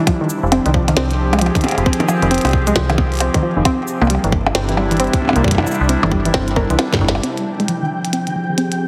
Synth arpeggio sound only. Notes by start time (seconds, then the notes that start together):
0.07 F3
0.21 D#3
0.52 C4
0.66 D#3
0.74 F3
0.88 D#3
0.97 C4
1.33 G#3
1.41 F3
1.55 D#3
1.86 C4
2.00 D#3
2.09 F3
2.22 D#3
2.31 C4
2.67 G#3
2.76 F3
2.90 D#3
3.20 C4
3.34 D#3
3.43 F3
3.57 D#3
3.65 C4
4.02 A#3
4.10 G3
4.24 E3
4.55 C4
4.69 E3
4.77 G3
4.91 E3
5.00 C4
5.36 A#3
5.44 G3
5.58 E3
5.89 C4
6.03 E3
6.12 G3
6.25 E3
6.34 C4
6.56 A#4
6.70 E3
6.79 C4
6.93 G3
7.23 C4
7.60 G#3
7.68 F3
7.82 D#3
8.13 C4
8.27 D#3
8.35 F3
8.49 D#3
8.58 C4